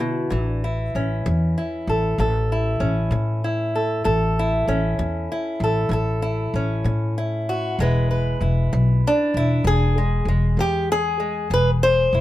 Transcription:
Already playing: upright bass D3, steel-string acoustic guitar E4
0.00 steel-string acoustic guitar B2
0.30 upright bass A1, steel-string acoustic guitar A2 E3
0.45 steel-string acoustic guitar D4
0.64 steel-string acoustic guitar E4
0.95 upright bass A1, steel-string acoustic guitar C#4
1.26 upright bass E2, steel-string acoustic guitar A2
1.58 steel-string acoustic guitar E4
1.87 upright bass A1, steel-string acoustic guitar A4
2.18 upright bass A1, steel-string acoustic guitar A2 A4
2.52 steel-string acoustic guitar E4
2.80 upright bass A1, steel-string acoustic guitar C#4
3.11 upright bass A2, steel-string acoustic guitar A2
3.44 steel-string acoustic guitar E4
3.75 steel-string acoustic guitar A4
4.04 upright bass A1, steel-string acoustic guitar A2 A4
4.39 steel-string acoustic guitar E4
4.67 upright bass A1, steel-string acoustic guitar C#4
4.99 upright bass E2, steel-string acoustic guitar A2
5.32 steel-string acoustic guitar E4
5.60 upright bass A1, steel-string acoustic guitar A4
5.89 upright bass A1, steel-string acoustic guitar A2 A4
6.22 steel-string acoustic guitar E4
6.54 upright bass A1, steel-string acoustic guitar C#4
6.84 upright bass A2, steel-string acoustic guitar A2
7.18 steel-string acoustic guitar E4
7.49 steel-string acoustic guitar F#4
7.79 upright bass E1, steel-string acoustic guitar E3 G#3 E4 B4
8.11 steel-string acoustic guitar B4
8.41 upright bass E1, steel-string acoustic guitar E4
8.73 upright bass B1, steel-string acoustic guitar E3
9.07 steel-string acoustic guitar D4
9.34 upright bass E1, steel-string acoustic guitar E4
9.64 upright bass E1, steel-string acoustic guitar E3 G#4
9.98 steel-string acoustic guitar G#3
10.25 upright bass E1, steel-string acoustic guitar G#3
10.57 upright bass E2, steel-string acoustic guitar E3 G4
10.92 steel-string acoustic guitar G#4
11.20 steel-string acoustic guitar G#3
11.50 upright bass E1, steel-string acoustic guitar E3 B4
11.83 steel-string acoustic guitar C5
12.13 upright bass E1, steel-string acoustic guitar E4

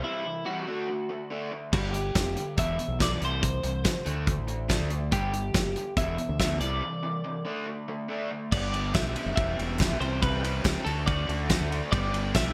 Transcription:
0.03 overdriven electric guitar C3 E3 G3, clean electric guitar E4
0.25 overdriven electric guitar C3 E3
0.46 overdriven electric guitar C3 E3 G3, clean electric guitar F#4
0.67 overdriven electric guitar D3 A3 D4
0.88 overdriven electric guitar D3 A3
1.09 overdriven electric guitar D3 A3
1.30 overdriven electric guitar D3 A3 D4
1.52 overdriven electric guitar D3 A3
1.72 fingered electric bass G1, overdriven electric guitar G2 D3 G3, clean electric guitar G4, kick, crash
1.93 overdriven electric guitar G2 D3, closed hi-hat
2.15 fingered electric bass F1, overdriven electric guitar G2 D3, kick, snare, closed hi-hat
2.36 overdriven electric guitar G2 D3, closed hi-hat
2.57 fingered electric bass E1, overdriven electric guitar E2 B2 E3, clean electric guitar E5, kick, closed hi-hat
2.78 overdriven electric guitar E2 B2, closed hi-hat
2.88 fingered electric bass B1
2.99 overdriven electric guitar E2 B2 E3, clean electric guitar D5, kick, snare, closed hi-hat
3.20 fingered electric bass C2, overdriven electric guitar C3 E3 G3, closed hi-hat
3.25 clean electric guitar C5
3.41 overdriven electric guitar C3 E3, kick, closed hi-hat
3.63 fingered electric bass C2, overdriven electric guitar C3 E3, closed hi-hat
3.84 overdriven electric guitar C3 E3, kick, snare, closed hi-hat
4.05 fingered electric bass D2, overdriven electric guitar D3 A3 D4, closed hi-hat
4.27 overdriven electric guitar D3 A3, kick, closed hi-hat
4.38 fingered electric bass A1
4.47 overdriven electric guitar D3 A3, closed hi-hat
4.68 overdriven electric guitar D3 A3 D4, kick, snare, closed hi-hat
4.80 fingered electric bass D2
4.90 overdriven electric guitar D3 A3, closed hi-hat
5.12 fingered electric bass G1, overdriven electric guitar G2 D3 G3, clean electric guitar G4, kick, closed hi-hat
5.33 overdriven electric guitar G2 D3, closed hi-hat
5.54 fingered electric bass F#1, overdriven electric guitar G2 D3, kick, snare, closed hi-hat
5.76 overdriven electric guitar G2 D3, closed hi-hat
5.97 fingered electric bass E1, overdriven electric guitar E2 B2 E3, clean electric guitar E5, kick, closed hi-hat
6.18 overdriven electric guitar E2 B2, closed hi-hat
6.29 fingered electric bass D2
6.40 overdriven electric guitar E2 B2 E3, clean electric guitar E5, kick, snare, closed hi-hat
6.60 fingered electric bass C2, overdriven electric guitar C3 E3 G3, clean electric guitar D5, closed hi-hat
6.82 overdriven electric guitar C3 E3
7.03 overdriven electric guitar C3 E3
7.24 overdriven electric guitar C3 E3
7.45 overdriven electric guitar D3 A3 D4
7.67 overdriven electric guitar D3 A3
7.88 overdriven electric guitar D3 A3
8.08 overdriven electric guitar D3 A3 D4
8.31 overdriven electric guitar D3 A3
8.52 fingered electric bass G1, overdriven electric guitar G2 D3 G3 B3 D4 G4, clean electric guitar D5, kick, crash
8.73 overdriven electric guitar G2 D3 G3 B3 D4 G4, ride
8.94 fingered electric bass B1, overdriven electric guitar G2 D3 G3 B3 D4 G4, clean electric guitar E5, kick, snare, clap, ride
9.15 overdriven electric guitar G2 D3 G3 B3 D4 G4, ride
9.26 fingered electric bass F#1
9.36 fingered electric bass E1, overdriven electric guitar E2 B2 E3 G3 B3 G4, clean electric guitar E5, kick, ride
9.56 fingered electric bass E1, overdriven electric guitar E2 B2 E3 G3 B3 G4, ride
9.78 overdriven electric guitar E2 B2 E3 G3 B3 G4, kick, snare, clap, ride
9.91 fingered electric bass B1
9.99 fingered electric bass C2, overdriven electric guitar C3 E3 G3 C4 G4, clean electric guitar C5, ride
10.20 overdriven electric guitar C3 E3 G3 C4 G4, clean electric guitar B4, kick, ride
10.42 overdriven electric guitar C3 E3 G3 C4 G4, ride
10.63 fingered electric bass C#2, overdriven electric guitar C3 E3 G3 C4 G4, kick, snare, clap, ride
10.84 fingered electric bass D2, overdriven electric guitar D3 A3 D4 F#4, clean electric guitar A4, ride
11.06 overdriven electric guitar D3 A3 D4 F#4, clean electric guitar D5, kick, ride
11.28 fingered electric bass D2, overdriven electric guitar D3 A3 D4 F#4, ride
11.48 overdriven electric guitar D3 A3 D4 F#4, kick, snare, clap, ride
11.60 fingered electric bass D2
11.70 overdriven electric guitar D3 A3 D4 F#4, ride
11.91 fingered electric bass G1, overdriven electric guitar G2 D3 G3 B3 D4 G4, clean electric guitar D5, kick, ride
12.12 overdriven electric guitar G2 D3 G3 B3 D4 G4, ride
12.34 fingered electric bass B1, overdriven electric guitar G2 D3 G3 B3 D4 G4, clean electric guitar E5, kick, snare, clap, ride

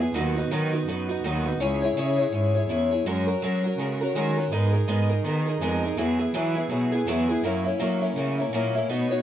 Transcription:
Already playing: cello E2
0.00 twelve-string acoustic guitar B3 E4 G#4
0.14 cello D#2, twelve-string acoustic guitar D#3 F#3 B3 D#4 F#4
0.36 twelve-string acoustic guitar B3 D#4 F#4
0.51 cello D#3, twelve-string acoustic guitar D#3 F#3 B3 D#4 F#4
0.73 twelve-string acoustic guitar B3 D#4 F#4
0.87 cello F#2, twelve-string acoustic guitar F#3 B3 D#4 F#4
1.09 twelve-string acoustic guitar B3 D#4 F#4
1.23 cello D#2, twelve-string acoustic guitar D#3 F#3 B3 D#4 F#4
1.46 twelve-string acoustic guitar B3 D#4 F#4
1.60 cello C#2, twelve-string acoustic guitar C#4 E4 G#4 C#5
1.82 twelve-string acoustic guitar E4 G#4 C#5
1.97 cello C#3, twelve-string acoustic guitar C#4 E4 G#4 C#5
2.18 twelve-string acoustic guitar E4 G#4 C#5
2.32 cello G#2, twelve-string acoustic guitar C#4 E4 G#4 C#5
2.55 twelve-string acoustic guitar E4 G#4 C#5
2.69 cello E2, twelve-string acoustic guitar C#4 E4 G#4 C#5
2.91 twelve-string acoustic guitar E4 G#4 C#5
3.06 cello F#2, twelve-string acoustic guitar F#3 G#3 C#4 F#4 A#4
3.27 twelve-string acoustic guitar C#4 F#4 A#4
3.42 twelve-string acoustic guitar F#3 G#3 C#4 F#4 A#4, cello F#3
3.64 twelve-string acoustic guitar C#4 F#4 A#4
3.78 cello C#3, twelve-string acoustic guitar G#3 C#4 F#4 A#4
4.01 twelve-string acoustic guitar C#4 F#4 A#4
4.15 cello D#3, twelve-string acoustic guitar F#3 G#3 C#4 F#4 A#4
4.37 twelve-string acoustic guitar C#4 F#4 A#4
4.52 cello G#2, twelve-string acoustic guitar G#3 B3 D#4 G#4 A#4
4.73 twelve-string acoustic guitar D#4 G#4 A#4
4.88 cello G#2, twelve-string acoustic guitar G#3 B3 D#4 G#4 A#4
5.10 twelve-string acoustic guitar D#4 G#4 A#4
5.25 cello D#3, twelve-string acoustic guitar B3 D#4 G#4 A#4
5.47 twelve-string acoustic guitar D#4 G#4 A#4
5.61 cello F2, twelve-string acoustic guitar G#3 B3 D#4 G#4 A#4
5.83 twelve-string acoustic guitar D#4 G#4 A#4
5.97 cello E2, twelve-string acoustic guitar E3 F#3 B3 E4 G#4
6.19 twelve-string acoustic guitar B3 E4 G#4
6.34 twelve-string acoustic guitar E3 F#3 B3 E4 G#4, cello E3
6.55 twelve-string acoustic guitar B3 E4 G#4
6.69 cello B2, twelve-string acoustic guitar F#3 B3 E4 G#4
6.92 twelve-string acoustic guitar B3 E4 G#4
7.07 cello E2, twelve-string acoustic guitar E3 F#3 B3 E4 G#4
7.29 twelve-string acoustic guitar B3 E4 G#4
7.43 cello F#2, twelve-string acoustic guitar F#3 A#3 C#4 E4
7.65 twelve-string acoustic guitar A#3 C#4 E4
7.79 twelve-string acoustic guitar F#3 A#3 C#4 E4, cello F#3
8.01 twelve-string acoustic guitar A#3 C#4 E4
8.16 cello C#3, twelve-string acoustic guitar F#3 A#3 C#4 E4
8.38 twelve-string acoustic guitar A#3 C#4 E4
8.53 cello A#2, twelve-string acoustic guitar F#3 A#3 C#4 E4
8.75 twelve-string acoustic guitar A#3 C#4 E4
8.89 cello B2, twelve-string acoustic guitar B3 D#4 F#4 C#5
9.11 twelve-string acoustic guitar D#4 F#4 C#5

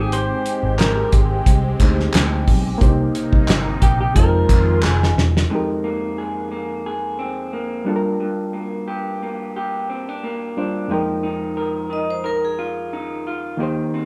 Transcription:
Already playing: picked electric bass G#1, reed electric piano G#3 D#4 G4 C5, analog synth pad G#3 C4 G4
0.00 clean electric guitar G#4
0.12 clean electric guitar C5, closed hi-hat
0.46 closed hi-hat
0.63 picked electric bass G#1
0.79 clean electric guitar A#4, snare, clap, closed hi-hat
1.12 picked electric bass G#1, kick, closed hi-hat
1.46 picked electric bass C2, kick, closed hi-hat
1.80 picked electric bass D2, reed electric piano G#3 D#4 G4, kick, clap, closed hi-hat
1.84 reed electric piano C5
2.00 snare
2.13 picked electric bass D2, snare, clap, closed hi-hat
2.48 picked electric bass B1, kick, open hi-hat
2.78 picked electric bass C2, reed electric piano A#3 D4 G4, kick, closed hi-hat
2.83 analog synth pad C3 A#3 D#4, reed electric piano D#4 C5
3.15 closed hi-hat
3.32 picked electric bass C2, kick
3.48 picked electric bass G1, snare, clap, closed hi-hat
3.82 picked electric bass A#1, clean electric guitar G4, kick, closed hi-hat
4.01 clean electric guitar G4
4.15 picked electric bass F2, analog synth pad D#3 G#3 F4, reed electric piano G#3 D#4 F4, clean electric guitar A#4, kick, closed hi-hat
4.20 reed electric piano C5
4.49 picked electric bass F2, kick, clap, closed hi-hat
4.82 picked electric bass F1, clean electric guitar G#4, snare, clap
5.03 snare
5.16 picked electric bass E1, snare
5.37 snare
5.50 reed electric piano F2 G#3 D#4, clean electric guitar F2
5.54 reed electric piano G4 A#4
5.84 clean electric guitar A#3
6.18 clean electric guitar G#4
6.52 clean electric guitar A#3
6.86 clean electric guitar G#4
7.19 clean electric guitar C4
7.53 clean electric guitar A#3
7.85 clean electric guitar G2, reed electric piano G3 D4 F4
7.89 reed electric piano A4
7.96 reed electric piano A#4
8.20 clean electric guitar G2
8.53 clean electric guitar A#3
8.88 clean electric guitar G4
9.23 clean electric guitar A#3
9.56 clean electric guitar G4
9.90 clean electric guitar C4
10.09 clean electric guitar D4
10.24 clean electric guitar A#3
10.57 reed electric piano G3 D4 F4 C5, clean electric guitar D4
10.88 reed electric piano F2 G#3 D#4 G5, clean electric guitar F3
10.94 reed electric piano A#4
11.23 clean electric guitar D#4
11.57 clean electric guitar A#4
11.90 clean electric guitar D#4, vibraphone D#5
12.10 vibraphone C5
12.24 clean electric guitar A#4, vibraphone A#4
12.45 vibraphone G#4
12.59 clean electric guitar F4
12.93 clean electric guitar D#4
13.27 clean electric guitar F4
13.57 reed electric piano D#3 A#3 D#4 G4, clean electric guitar D#3
13.63 reed electric piano C5
13.94 clean electric guitar C4

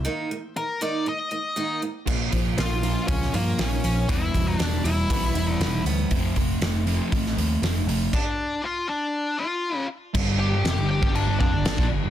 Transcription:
0.05 steel-string acoustic guitar D#3 A#3 D#4
0.31 steel-string acoustic guitar D#3 A#3
0.56 steel-string acoustic guitar D#3 A#3, lead electric guitar A#4
0.81 steel-string acoustic guitar D#3 A#3 D#4, lead electric guitar D5
1.06 steel-string acoustic guitar D#3 A#3, lead electric guitar D#5
1.31 steel-string acoustic guitar D#3 A#3
1.56 steel-string acoustic guitar D#3 A#3 D#4
1.82 steel-string acoustic guitar D#3 A#3
2.06 picked electric bass A#1, distorted electric guitar A#2 F3 A#3, steel-string acoustic guitar A#2, kick, crash
2.32 picked electric bass A#1, distorted electric guitar A#2 F3, steel-string acoustic guitar F3, kick, open hi-hat
2.57 picked electric bass A#1, distorted electric guitar A#2 F3, steel-string acoustic guitar A#3, lead electric guitar F4 F5, snare, open hi-hat
2.82 distorted electric guitar A#2 F3 A#3, steel-string acoustic guitar F4, open hi-hat
3.07 picked electric bass C#2, distorted electric guitar A#2 F3, lead electric guitar C#4 C#5, steel-string acoustic guitar C#4, kick, open hi-hat
3.22 snare
3.33 picked electric bass G2, distorted electric guitar A#2 F3, lead electric guitar A#3 A#4, steel-string acoustic guitar F4, open hi-hat
3.58 picked electric bass A#1, distorted electric guitar A#2 F3, steel-string acoustic guitar A#3, lead electric guitar C#4 C#5, snare, open hi-hat
3.84 picked electric bass A#1, distorted electric guitar A#2 F3, steel-string acoustic guitar C#4, open hi-hat
4.08 picked electric bass E1, steel-string acoustic guitar E2, distorted electric guitar E3 G3 B3, lead electric guitar E4 E5, kick, open hi-hat
4.34 picked electric bass E1, steel-string acoustic guitar B2, distorted electric guitar E3 G3, kick, open hi-hat
4.47 lead electric guitar D4 D5
4.59 picked electric bass E1, distorted electric guitar E3 G3, steel-string acoustic guitar G3, snare, open hi-hat
4.84 picked electric bass E1, distorted electric guitar E3 G3, lead electric guitar E4 E5, steel-string acoustic guitar E4, open hi-hat
5.10 picked electric bass B1, distorted electric guitar E3 G3 B3, steel-string acoustic guitar B3, kick, open hi-hat
5.35 picked electric bass E1, distorted electric guitar E3 G3, steel-string acoustic guitar E4, open hi-hat
5.52 lead electric guitar D5
5.60 picked electric bass E1, distorted electric guitar E3 G3, steel-string acoustic guitar G3, snare, open hi-hat
5.85 picked electric bass D2, distorted electric guitar E3 G3, steel-string acoustic guitar B3, open hi-hat
6.11 picked electric bass F1, distorted electric guitar F3 A3 C4, kick, open hi-hat
6.36 picked electric bass F1, distorted electric guitar F3 A3, kick, open hi-hat
6.61 picked electric bass F1, distorted electric guitar F3 A3, snare, open hi-hat
6.86 distorted electric guitar F3 A3 C4, open hi-hat
7.12 picked electric bass A1, distorted electric guitar F3 A3, kick, open hi-hat
7.26 snare
7.37 picked electric bass D#2, distorted electric guitar F3 A3, open hi-hat
7.62 picked electric bass F1, distorted electric guitar F3 A3, snare, open hi-hat
7.86 picked electric bass F1, distorted electric guitar F3 A3, open hi-hat
8.13 lead electric guitar D4 D5, kick, crash
8.64 lead electric guitar F4 F5
8.89 lead electric guitar D4 D5
9.39 lead electric guitar F4 F5
10.14 picked electric bass G1, distorted electric guitar G2 D3 G3, kick, crash
10.39 lead electric guitar G4 G5
10.52 picked electric bass G1, distorted electric guitar G2 D3
10.64 picked electric bass F1, distorted electric guitar F2 C3, snare, crash
10.77 picked electric bass G1, distorted electric guitar G2 D3
10.91 lead electric guitar G4 G5
11.01 picked electric bass G1, distorted electric guitar G2 D3 G3, kick
11.15 lead electric guitar D4 D5, crash
11.27 picked electric bass G1, distorted electric guitar G2 D3
11.39 picked electric bass F2, distorted electric guitar F3 C4, lead electric guitar D4 D5, kick
11.52 picked electric bass G1, distorted electric guitar G2 D3
11.65 picked electric bass G1, distorted electric guitar G2 D3, snare, crash
11.78 picked electric bass A#1, distorted electric guitar A#2 F3, kick, snare
11.89 picked electric bass G1, distorted electric guitar G2 D3
12.03 picked electric bass G1, distorted electric guitar G2 D3

